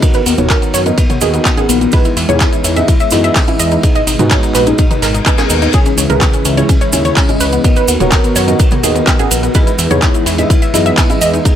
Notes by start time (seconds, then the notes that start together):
0.02 D#3 B3 D#4 F#4 A#4 D#5, kick, closed hi-hat, ride, maracas
0.14 B4, closed hi-hat, maracas
0.25 D#2 B3, open hi-hat, ride, maracas
0.38 D#1 D#3 B3 D#4 F#4 A#4 C#5, closed hi-hat, mid tom, ride, maracas
0.50 A#4, kick, snare, clap, closed hi-hat, ride, maracas
0.62 B3, closed hi-hat, maracas
0.74 F#2 C#5, snare, open hi-hat, ride, maracas
0.86 D#3 B3 D#4 F#4 A#4 D#5, closed hi-hat, high conga, maracas
0.98 B3, kick, closed hi-hat, ride, maracas
1.10 B3, closed hi-hat, mid tom, maracas
1.21 D#2 D#3 B3 D#4 F#4 G#4 A#4 D#5, open hi-hat, ride, maracas
1.34 B3, closed hi-hat, maracas
1.45 B3, kick, snare, clap, closed hi-hat, ride, maracas
1.57 D#3 B3 D#4 F#4 G#4 A#4 F#5, closed hi-hat, high conga, maracas
1.69 A#1 B3, open hi-hat, ride, maracas
1.81 B3, closed hi-hat, maracas
1.92 E3 G#3 B3 D#4 E4 G#4 B4 D#5, kick, closed hi-hat, ride, maracas
2.05 E4, closed hi-hat, ride, maracas
2.17 E2 E4, open hi-hat, ride, maracas
2.29 E2 E3 B3 D#4 E4 G#4 C#5, closed hi-hat, mid tom, maracas
2.40 E4, kick, snare, clap, closed hi-hat, ride, maracas
2.53 E4, closed hi-hat, maracas
2.64 E2 E4, open hi-hat, ride, maracas
2.76 E3 B3 D#4 E4 G#4 D#5 E5, closed hi-hat, ride, high conga, maracas
2.88 E4, kick, closed hi-hat, ride, maracas
3.00 E5, closed hi-hat, maracas
3.11 F#2 E3 B3 D#4 E4 G#4 D#5, snare, open hi-hat, ride, maracas
3.24 E5, closed hi-hat, maracas
3.35 E4, kick, snare, clap, closed hi-hat, open hi-hat, maracas
3.48 E3 B3 E4 G#4 D#5 E5, closed hi-hat, high conga, maracas
3.59 E2 D#5, open hi-hat, maracas
3.71 D#4, closed hi-hat, maracas
3.83 G#2 B2 B3 D#4 G#4, kick, closed hi-hat, ride, maracas
3.95 D#5, closed hi-hat, maracas
4.06 G#1 D#4, open hi-hat, ride, maracas
4.19 G#2 B3 D#4 F#4, closed hi-hat, mid tom, ride, maracas
4.30 C#5, kick, snare, clap, closed hi-hat, ride, maracas
4.43 D#4, closed hi-hat, maracas
4.54 A#1 B4, snare, clap, open hi-hat, ride, maracas
4.67 G#2 B3 D#4 G#4, closed hi-hat, high conga, maracas
4.78 D#4, kick, closed hi-hat, ride, reverse cymbal, maracas
4.90 D#4, closed hi-hat, mid tom, ride, maracas
5.02 G#1 A#4, snare, open hi-hat, ride, maracas
5.14 D#4, closed hi-hat, maracas
5.26 G#2 B3 D#4 B4, kick, clap, closed hi-hat, ride, maracas
5.38 G#2 B3 D#4 G#4 A#4, snare, closed hi-hat, ride, high conga, maracas
5.50 D#2 D#4, open hi-hat, maracas
5.62 D#4, closed hi-hat, ride, maracas
5.73 C#3 E3 G#3 E4 G#4 C#5, kick, closed hi-hat, ride, maracas
5.86 C#4, closed hi-hat, ride, maracas
5.98 C#2 C#4, open hi-hat, ride, maracas
6.10 C#2 C#3 E4 G#4 A#4 B4, closed hi-hat, mid tom, maracas
6.21 C#4, kick, snare, clap, closed hi-hat, ride, maracas
6.33 C#4, closed hi-hat, maracas
6.45 C#2 C#4, open hi-hat, ride, maracas
6.57 C#3 E4 G#4 C#5, closed hi-hat, ride, high conga, maracas
6.69 C#4, kick, closed hi-hat, ride, maracas
6.81 C#5, closed hi-hat, maracas
6.92 D#2 C#3 C#4 E4 G#4 C#5, snare, open hi-hat, ride, maracas
7.05 C#5, closed hi-hat, maracas
7.17 C#4, kick, snare, clap, closed hi-hat, open hi-hat, maracas
7.29 C#3 C#4 E4 G#4 D#5, closed hi-hat, high conga, maracas
7.40 C#2 B4, open hi-hat, ride, maracas
7.52 B3, closed hi-hat, maracas
7.64 D#3 B3 D#4 F#4 A#4 D#5, kick, closed hi-hat, ride, maracas
7.76 B4, closed hi-hat, maracas
7.88 D#2 B3, open hi-hat, ride, maracas
8.00 D#1 D#3 B3 D#4 F#4 A#4 C#5, closed hi-hat, mid tom, ride, maracas
8.11 A#4, kick, snare, clap, closed hi-hat, ride, maracas
8.24 B3, closed hi-hat, maracas
8.36 F#2 C#5, snare, open hi-hat, ride, maracas
8.48 D#3 B3 D#4 F#4 A#4 D#5, closed hi-hat, high conga, maracas
8.59 B3, kick, closed hi-hat, ride, maracas
8.71 B3, closed hi-hat, mid tom, maracas
8.83 D#2 D#3 B3 D#4 F#4 G#4 A#4 D#5, open hi-hat, ride, maracas
8.95 B3, closed hi-hat, maracas
9.07 B3, kick, snare, clap, closed hi-hat, ride, maracas
9.19 D#3 B3 D#4 F#4 G#4 A#4 F#5, closed hi-hat, high conga, maracas
9.30 A#1 B3, open hi-hat, ride, maracas
9.43 B3, closed hi-hat, maracas
9.54 E3 G#3 B3 D#4 E4 G#4 B4 D#5, kick, closed hi-hat, ride, maracas
9.67 E4, closed hi-hat, ride, maracas
9.78 E2 E4, open hi-hat, ride, maracas
9.91 E2 E3 B3 D#4 E4 G#4 C#5, closed hi-hat, mid tom, maracas
10.02 E4, kick, snare, clap, closed hi-hat, ride, maracas
10.14 E4, closed hi-hat, maracas
10.26 E2 E4, open hi-hat, ride, maracas
10.38 E3 B3 D#4 E4 G#4 D#5 E5, closed hi-hat, ride, high conga, maracas
10.50 E4, kick, closed hi-hat, ride, maracas
10.62 E5, closed hi-hat, maracas
10.74 F#2 E3 B3 D#4 E4 G#4 D#5, snare, open hi-hat, ride, maracas
10.86 E5, closed hi-hat, maracas
10.97 E4, kick, snare, clap, closed hi-hat, open hi-hat, maracas
11.10 E3 B3 E4 G#4 D#5 E5, closed hi-hat, high conga, maracas
11.21 E2 D#5, open hi-hat, ride, maracas
11.34 D#4, closed hi-hat, maracas
11.45 G#2 B2 B3 D#4 G#4, kick, closed hi-hat, ride, maracas